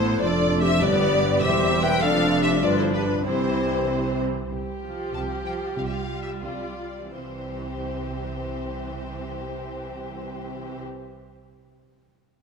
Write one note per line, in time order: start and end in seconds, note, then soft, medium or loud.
0.00 0.18 A1 medium
0.00 0.18 A2 medium
0.00 0.18 A3 medium
0.00 0.19 A3 medium
0.00 0.22 B3 medium
0.00 0.18 E4 medium
0.00 0.22 E4 medium
0.00 0.22 A4 medium
0.00 0.21 C5 medium
0.00 0.21 C5 loud
0.21 0.82 F1 medium
0.21 0.82 F2 medium
0.21 0.81 A3 medium
0.21 0.82 D4 medium
0.21 0.61 F4 medium
0.21 0.62 A4 medium
0.21 0.61 D5 medium
0.21 0.62 D5 medium
0.62 0.71 G4 medium
0.62 0.83 C5 medium
0.62 0.82 E5 medium
0.62 0.82 E5 loud
0.80 1.42 G1 medium
0.80 1.38 G2 medium
0.80 1.42 G2 medium
0.80 1.40 G3 medium
0.80 1.41 G3 medium
0.80 1.42 B3 medium
0.80 1.41 G4 medium
0.80 1.42 B4 medium
0.80 1.41 D5 loud
0.80 1.43 D5 medium
1.41 2.02 E1 medium
1.41 2.02 E2 medium
1.41 2.01 G3 medium
1.41 2.02 C4 medium
1.41 1.82 G4 medium
1.41 1.82 C5 medium
1.41 1.82 E5 loud
1.41 1.82 E5 medium
1.82 2.01 B4 medium
1.82 2.02 E5 medium
1.82 2.02 G5 loud
1.82 2.02 G5 medium
2.01 2.63 F1 medium
2.01 2.63 F2 medium
2.01 2.60 F3 medium
2.01 2.62 F3 medium
2.01 2.61 D4 medium
2.01 2.62 D4 medium
2.01 2.44 A4 medium
2.01 2.43 D5 medium
2.01 2.42 F5 loud
2.01 2.43 F5 medium
2.42 2.62 G4 medium
2.42 2.48 C5 medium
2.42 2.50 E5 medium
2.42 2.63 E5 medium
2.61 3.25 G1 medium
2.61 3.26 G2 medium
2.61 3.23 F3 medium
2.61 3.24 F3 medium
2.61 3.23 D4 medium
2.61 3.24 D4 medium
2.61 2.79 F4 medium
2.61 2.78 B4 medium
2.61 2.69 D5 medium
2.61 2.79 D5 medium
2.78 2.95 E4 medium
2.78 2.85 A4 medium
2.78 2.85 C5 medium
2.78 2.94 C5 medium
2.93 3.24 D4 medium
2.93 3.01 G4 medium
2.93 3.02 B4 medium
2.93 3.25 B4 medium
3.24 4.28 C2 medium
3.24 4.28 C3 medium
3.24 4.19 E3 medium
3.24 4.28 E3 medium
3.24 4.19 C4 medium
3.24 4.28 C4 medium
3.24 4.18 E4 medium
3.24 4.18 G4 medium
3.24 4.18 C5 medium
4.51 5.03 C2 soft
4.51 5.03 C3 soft
4.51 6.39 G4 soft
4.83 5.44 F3 soft
4.83 5.44 F4 soft
5.13 5.66 C2 medium
5.13 5.66 C3 soft
5.13 5.22 A5 soft
5.45 5.76 F3 soft
5.45 5.76 F4 soft
5.45 5.53 G5 medium
5.77 6.32 C2 medium
5.77 6.32 C3 medium
5.77 6.09 G3 soft
5.77 6.09 F4 soft
5.77 5.80 F5 medium
5.85 5.92 E5 medium
5.92 6.20 F5 medium
6.10 6.77 G3 soft
6.10 6.77 F4 soft
6.22 6.30 E5 medium
6.43 7.03 C2 soft
6.43 7.03 C3 soft
6.43 6.78 F4 soft
6.43 7.13 D5 soft
6.79 7.14 G3 soft
6.79 7.14 F4 soft
7.14 10.80 C2 soft
7.14 10.80 C3 soft
7.14 10.81 E3 soft
7.14 10.81 C4 soft
7.14 10.81 G4 soft
7.14 10.81 C5 soft